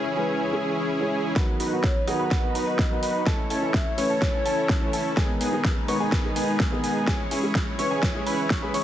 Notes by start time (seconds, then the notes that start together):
Already playing: E3 C#4 E4 G#4
0.16 E3 G#3 C#4 B4
0.52 E3 G#3 C#4 G#4
1.00 E3 G#3 C#4 G#4
1.35 D#3 F#3 B3 D#4 F#4 B4 B5, kick, snare
1.60 D#4 F#4 B4 B5, open hi-hat
1.71 D#3 F#3 B3 F#4
1.84 C#5, kick, snare
2.07 D#3 F#3 B3 D#4 F#4 G#4 D#5 F#5 D#6, open hi-hat
2.19 D#4 F#4 B4 B5
2.31 kick, snare
2.43 D#3 F#3 B3 F#4
2.55 D#4 F#4 B4 B5, open hi-hat
2.67 D#5
2.79 kick, snare
2.90 D#3 F#3 B3 F#4
3.03 D#4 F#4 B4 D#5 B5, open hi-hat
3.26 E3 A3 C#4 E4 A4 C#5 A5, kick, snare
3.50 C#4 E4 A4 A5, open hi-hat
3.62 E3 A3 C#4 A4
3.74 E5, kick, snare
3.97 E3 A3 C#4 E4 B4 C#5 C#6, open hi-hat
4.10 C#4 E4 A4 A5
4.22 kick, snare
4.33 E3 A3 C#4 A4
4.45 C#4 E4 A4 A5, open hi-hat
4.69 kick, snare
4.81 E3 A3 C#4 A4
4.93 C#4 E4 A4 A5, open hi-hat
5.16 D#3 G#3 B3 D#4 G#4 B4 G#5, kick, snare
5.41 B3 D#4 G#4 G#5, open hi-hat
5.52 D#3 G#3 B3 G#4
5.65 kick, snare
5.88 D#3 G#3 B3 D#4 B4 C#5 C#6, open hi-hat
6.00 B3 D#4 G#4 G#5
6.12 kick, snare
6.24 D#3 G#3 B3 G#4
6.36 B3 D#4 G#4 G#5, open hi-hat
6.60 kick, snare
6.71 D#3 G#3 B3 G#4
6.84 B3 D#4 G#4 G#5, open hi-hat
7.07 E3 G#3 C#4 E4 G#4 C#5 G#5, kick, snare
7.31 C#4 E4 G#4 G#5, open hi-hat
7.43 E3 G#3 C#4 G#4
7.55 kick, snare
7.78 E3 G#3 C#4 E4 B4 C#5 C#6, open hi-hat
7.91 C#4 E4 G#4 G#5
8.03 kick, snare
8.14 E3 G#3 C#4 G#4
8.26 C#4 E4 B4 B5, open hi-hat
8.50 C#6, kick, snare
8.62 E3 G#3 C#4 E4 G#4 B4 B5
8.74 C#4 E4 C#5 C#6, open hi-hat